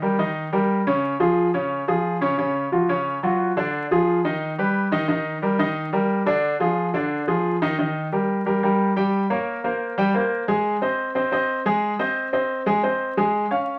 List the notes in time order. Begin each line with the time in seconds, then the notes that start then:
0.02 G3 G4 A#4
0.19 D#3 D#4 D#5
0.53 G3 G4 A#4
0.87 C#3 C#4 C#5
1.20 F3 F4 G#4
1.54 C#3 C#4 C#5
1.88 F3 F4 G#4
2.21 C#3 C#4 C#5
2.38 C#3 C#4 C#5
2.72 F3 F4 F#4
2.89 C#3 C#4 C#5
3.23 F#3 F4 F#4
3.57 D3 D4 D5
3.91 F3 F4 G#4
4.24 D#3 D#4 D#5
4.58 G3 G4 B4
4.92 D#3 D#4 D#5
5.08 D#3 D#4 D#5
5.42 G3 G4 A#4
5.59 D#3 D#4 D#5
5.93 G3 G4 A#4
6.26 D3 D4 D5
6.60 F3 F4 G#4
6.94 D3 D4 D5
7.27 F3 F4 G#4
7.62 D#3 D#4 D#5
7.79 D#3 D#4 D#5
8.12 G3 G4 A#4
8.46 G3 G4 A#4
8.63 G3 G4 A#4
8.96 G3 G4 G5
9.30 A#3 A#4 C#5
9.64 A#3 A#4 C5
9.98 G3 G4 G5
10.14 A#3 A#4 C5
10.48 G#3 G#4 G#5
10.82 C4 C5 D#5
11.15 C4 C5 D#5
11.32 C4 C5 D#5
11.66 G#3 G#4 G#5
11.99 C4 C5 D#5
12.33 C4 C5 D#5
12.66 G#3 G#4 G#5
12.83 C4 C5 D#5
13.17 G#3 G#4 G#5
13.51 C#4 C#5 F5